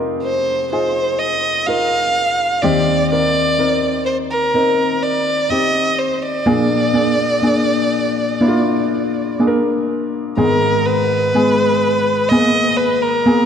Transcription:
Already playing: grand piano F1 F2 D#4 F4 G4 G#4 A#4
0.23 violin C5
0.72 grand piano D#4 F4 G#4, violin C5
1.19 violin D#5
1.66 grand piano D#4 F4 A#4, violin F5
2.62 grand piano D#2 D#3 C4 D#4 G4, violin D5
3.11 grand piano C4 D#4 A#4, violin D5
3.58 grand piano C4 D#4 A#4
4.06 violin C5
4.31 violin A#4
4.54 grand piano C4 D#4 A#4
5.02 violin D5
5.50 grand piano C4 D#4 G4, violin D#5
5.99 violin C5
6.22 violin D5
6.46 grand piano A#1 A#2 A#3 D4 G#4
6.93 grand piano A#3 D4 G#4
7.42 grand piano A#3 D4 G#4
8.41 grand piano A#3 D4 E4
8.48 grand piano F4
9.39 grand piano A#3 D4 G#4
9.47 grand piano A#4
10.37 grand piano G#1 G#2 G#3 B3 G#4, violin A#4
10.86 violin B4
11.34 grand piano G#3 B3 G#4
12.29 grand piano A#3 B3 G#4, violin D#5
12.77 violin B4
13.02 violin A#4
13.26 grand piano A#3 B3 G#4

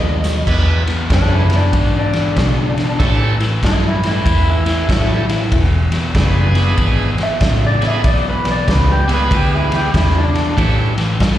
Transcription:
Already playing: fingered electric bass D#2, overdriven electric guitar B2 G#3, clean electric guitar D#5
0.24 overdriven electric guitar B2 F#3, snare, closed hi-hat
0.46 fingered electric bass E2, overdriven electric guitar E2 B2, tonewheel organ B3 D4 E4 G#4 B4, kick, crash
0.87 overdriven electric guitar E2 B2, snare, ride
1.10 overdriven electric guitar E2 C#3, fingered electric bass F#2, tonewheel organ B3 D4 E4 G#4 C#5, clean electric guitar D4, kick, snare, ride
1.35 clean electric guitar E4
1.50 overdriven electric guitar E2 B2, snare, ride
1.56 clean electric guitar D4
1.73 overdriven electric guitar E2 B2, fingered electric bass G#2, kick, ride
1.99 clean electric guitar D4
2.13 overdriven electric guitar E2 B2, snare, ride
2.36 overdriven electric guitar E2 C#3, fingered electric bass B2, kick, snare, ride
2.77 overdriven electric guitar E2 B2, snare, ride
2.99 fingered electric bass A2, overdriven electric guitar A2 E3, tonewheel organ A3 C#4 E4 G4 A4, kick, snare, ride
3.40 overdriven electric guitar A2 E3, snare, ride
3.63 fingered electric bass G2, overdriven electric guitar A2 F#3, clean electric guitar E4, kick, snare, ride
3.88 clean electric guitar E4
4.03 overdriven electric guitar A2 E3, snare, ride
4.09 clean electric guitar E4
4.26 fingered electric bass E2, overdriven electric guitar A2 E3, kick, ride
4.50 clean electric guitar E4
4.66 overdriven electric guitar A2 E3, snare, ride
4.89 fingered electric bass A1, overdriven electric guitar A2 F#3, tonewheel organ A3 C#4 E4 G4 A4, kick, snare, ride
5.29 overdriven electric guitar A2 E3, snare, ride
5.51 fingered electric bass E1, overdriven electric guitar E2 B2, kick, ride
5.91 overdriven electric guitar E2 B2, muted fingered electric bass stroke, snare, ride
6.15 fingered electric bass F#1, overdriven electric guitar E2 C#3, tonewheel organ G#3 B3 D4 E4 G#4, kick, snare, ride
6.55 overdriven electric guitar E2 B2, snare, ride
6.78 fingered electric bass G#1, overdriven electric guitar E2 B2, kick, ride
7.18 overdriven electric guitar E2 B2, muted fingered electric bass stroke, snare, ride
7.23 clean electric guitar E5
7.41 fingered electric bass A1, overdriven electric guitar E2 C#3, kick, snare, ride
7.67 clean electric guitar D5
7.81 overdriven electric guitar E2 B2, tonewheel organ G#3 B3 D4 E4 G#4, snare, ride
7.88 clean electric guitar E5
8.04 fingered electric bass B1, overdriven electric guitar E2 B2, clean electric guitar D5, kick, ride
8.29 clean electric guitar B4
8.45 overdriven electric guitar E2 B2, snare, ride
8.51 clean electric guitar D5
8.68 fingered electric bass C#2, overdriven electric guitar E2 C#3, clean electric guitar B4, kick, snare, ride
8.91 clean electric guitar G4
9.08 overdriven electric guitar E2 B2, tonewheel organ G#3 B3 D4 E4 G#4, snare, ride
9.14 clean electric guitar B4
9.31 fingered electric bass D2, overdriven electric guitar E2 B2, clean electric guitar G4, kick, ride
9.55 clean electric guitar E4
9.71 overdriven electric guitar E2 B2, snare, ride
9.76 clean electric guitar G4
9.94 overdriven electric guitar E2 C#3, fingered electric bass E2, clean electric guitar E4, kick, snare, ride
10.18 clean electric guitar D4
10.34 overdriven electric guitar E2 B2, snare, ride
10.57 overdriven electric guitar A2 E3, fingered electric bass A2, tonewheel organ G3 A3 C#4 E4 G4, kick, ride
10.98 overdriven electric guitar A2 E3, snare, ride
11.20 fingered electric bass G2, overdriven electric guitar A2 F#3, kick, snare, ride

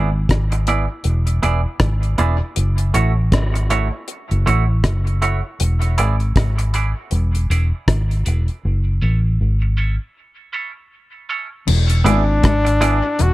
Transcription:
Already playing: fingered electric bass G#1
0.29 fingered electric bass G#1, kick, cross-stick, closed hi-hat
0.52 muted clean electric guitar stroke, closed hi-hat
0.67 clean electric guitar B3 E4 G#4 D5, closed hi-hat
1.04 fingered electric bass E1, closed hi-hat
1.27 closed hi-hat
1.43 fingered electric bass E1, clean electric guitar B3 E4 G#4 D5, closed hi-hat
1.80 fingered electric bass G#1, kick, cross-stick, closed hi-hat
2.03 closed hi-hat
2.18 fingered electric bass E1, clean electric guitar B3 E4 G#4 D5, closed hi-hat
2.56 fingered electric bass F#1, closed hi-hat
2.78 closed hi-hat
2.94 fingered electric bass A1, clean electric guitar A3 E4 F#4 C#5, closed hi-hat
3.32 fingered electric bass G#1, kick, cross-stick, closed hi-hat
3.54 muted clean electric guitar stroke, closed hi-hat
3.70 clean electric guitar A3 E4 F#4 C#5, closed hi-hat
4.08 closed hi-hat
4.31 fingered electric bass F#1, closed hi-hat
4.46 fingered electric bass A1, clean electric guitar A3 E4 F#4 C#5, closed hi-hat
4.84 fingered electric bass F#1, kick, cross-stick, closed hi-hat
5.07 closed hi-hat
5.22 clean electric guitar A3 E4 F#4 C#5, closed hi-hat
5.60 fingered electric bass E1, closed hi-hat
5.82 closed hi-hat
5.98 fingered electric bass G#1, clean electric guitar B3 E4 G#4 D5, closed hi-hat
6.20 closed hi-hat
6.36 fingered electric bass G#1, kick, cross-stick, closed hi-hat
6.58 muted clean electric guitar stroke, closed hi-hat
6.74 clean electric guitar B3 E4 G#4 D5, closed hi-hat
7.11 fingered electric bass E1, closed hi-hat
7.35 closed hi-hat
7.50 fingered electric bass E1, clean electric guitar B3 E4 G#4 D5, closed hi-hat
7.88 fingered electric bass G#1, kick, cross-stick, closed hi-hat
8.11 closed hi-hat
8.26 fingered electric bass E1, clean electric guitar B3 E4 G#4 D5, closed hi-hat
8.48 closed hi-hat
8.65 fingered electric bass F#1
9.02 fingered electric bass A1, clean electric guitar C#4 E4 A4 C#5
9.41 fingered electric bass G#1
9.62 muted clean electric guitar stroke
9.77 clean electric guitar C#4 E4 A4 C#5
10.53 clean electric guitar C#4 E4 A4 C#5
11.29 clean electric guitar C#4 E4 A4 C#5
11.67 fingered electric bass E1, clean electric guitar E2, crash
11.90 closed hi-hat
12.04 fingered electric bass G#1, clean electric guitar G#2 B3 E4 G#4 D5, closed hi-hat
12.10 flugelhorn D4
12.42 fingered electric bass G#1, clean electric guitar G#2, kick, cross-stick, closed hi-hat
12.65 muted clean electric guitar stroke, closed hi-hat
12.81 clean electric guitar B3 E4 G#4 D5, closed hi-hat
13.19 fingered electric bass E1, clean electric guitar E2, flugelhorn F#4, closed hi-hat

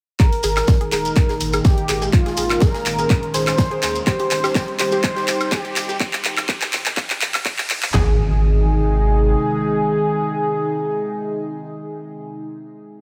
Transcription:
0.20 ambient pad A#2 D#3 G#3 D#4 A#4, synth pluck G#4, analog synth lead A#4, kick, clap, closed hi-hat, riser, shekere
0.33 closed hi-hat, open hi-hat
0.43 analog synth bass G#1, synth pluck G#4, closed hi-hat, open hi-hat, shekere
0.57 synth pluck G#4, snare, clap, closed hi-hat, high woodblock, shekere
0.67 kick, snare, closed hi-hat, shekere
0.81 synth pluck G#4, closed hi-hat
0.92 analog synth bass D#1, synth pluck G#4, analog synth lead A#4, clap, closed hi-hat, open hi-hat, shekere
1.05 closed hi-hat, shekere
1.16 synth pluck G#4, kick, clap, closed hi-hat, shekere
1.29 synth pluck G#4, snare, closed hi-hat
1.40 analog synth bass G#1, closed hi-hat, open hi-hat, shekere
1.53 synth pluck G#4, closed hi-hat, high woodblock, shekere
1.65 analog synth lead G4, synth pluck G#4, kick, snare, closed hi-hat, shekere
1.78 closed hi-hat
1.89 analog synth bass G#1, synth pluck G#4, clap, closed hi-hat, open hi-hat, shekere
2.02 synth pluck G#4, closed hi-hat, shekere
2.13 ambient pad C#4, analog synth lead F4, kick, clap, closed hi-hat
2.26 synth pluck G#4, snare, closed hi-hat
2.37 analog synth bass G#1, synth pluck G#4, closed hi-hat, open hi-hat, shekere
2.50 clap, closed hi-hat, high woodblock, shekere
2.60 synth pluck G#4, analog synth lead A#4, kick, snare, closed hi-hat, shekere
2.74 synth pluck G#4, snare, closed hi-hat
2.86 analog synth bass G#1, clap, closed hi-hat, open hi-hat, shekere
2.98 synth pluck G#4, closed hi-hat, shekere
3.10 synth pluck G#4, kick, clap, closed hi-hat, shekere
3.23 closed hi-hat
3.34 analog synth bass G#1, synth pluck G#4, analog synth lead C5, snare, closed hi-hat, open hi-hat, shekere
3.47 synth pluck G#4, clap, open hi-hat, high woodblock, shekere
3.58 kick, snare, closed hi-hat, shekere
3.71 synth pluck G#4, closed hi-hat
3.83 analog synth bass D#2, synth pluck G#4, snare, clap, closed hi-hat, open hi-hat, shekere
3.95 closed hi-hat, shekere
4.07 ambient pad C3 D#3 G3 D#4 G4, synth pluck G4, analog synth lead C5, kick, clap, closed hi-hat, shekere
4.19 synth pluck G4, closed hi-hat, open hi-hat
4.31 analog synth bass G#1, clap, closed hi-hat, open hi-hat, shekere
4.44 synth pluck G4, snare, closed hi-hat, high woodblock, shekere
4.55 synth pluck G4, kick, snare, clap, closed hi-hat, shekere
4.68 closed hi-hat
4.79 analog synth bass G#1, synth pluck G4, analog synth lead C5, clap, closed hi-hat, open hi-hat, shekere
4.92 synth pluck G4, closed hi-hat, shekere
5.04 kick, clap, closed hi-hat, shekere
5.16 synth pluck G4, snare, closed hi-hat
5.28 analog synth bass G#1, synth pluck G4, clap, closed hi-hat, open hi-hat, shekere
5.41 closed hi-hat, high woodblock, shekere
5.51 synth pluck G4, analog synth lead G4, kick, snare, clap, closed hi-hat, shekere
5.65 synth pluck G4, closed hi-hat
5.76 analog synth bass G#1, clap, closed hi-hat, open hi-hat, shekere
5.89 synth pluck G4, closed hi-hat, shekere
6.00 kick, clap, closed hi-hat
6.13 clap, closed hi-hat
6.24 analog synth bass G#1, clap, open hi-hat
6.37 clap, closed hi-hat, high woodblock
6.49 kick, clap, closed hi-hat
6.62 clap, closed hi-hat
6.73 analog synth bass G#1, clap, open hi-hat
6.86 clap, closed hi-hat
6.97 kick, clap, closed hi-hat
7.10 clap, closed hi-hat
7.21 analog synth bass G#1, clap, open hi-hat
7.34 clap, open hi-hat, high woodblock
7.46 kick, clap, closed hi-hat
7.58 clap, closed hi-hat
7.70 analog synth bass G#2, clap, open hi-hat
7.83 clap, closed hi-hat
7.94 analog synth bass G#1, ambient pad C3 D#3 G#3 D#4 G#4, synth pluck G#4, analog synth lead G#4, snare, clap, floor tom, impact

